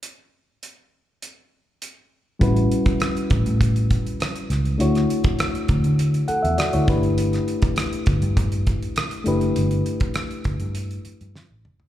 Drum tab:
HH |x---x---x---x---|xxxxxxxxxxxxxxxx|xxxxxxxxxxxxxxxx|xxxxxxxxxxxxxxxx|
SD |----------------|----r-------r-r-|-r--r-------r---|-r--r-------r---|
T2 |----------------|----------------|----------------|----------------|
FT |----------------|----------------|----------------|----------------|
BD |----------------|o--o--o-o-o-----|---o--o-------o-|---o--o-o-o-----|

HH |xxxxxxxxxxxx----|
SD |----r-------o---|
T2 |--------------o-|
FT |---------------o|
BD |---o--o---------|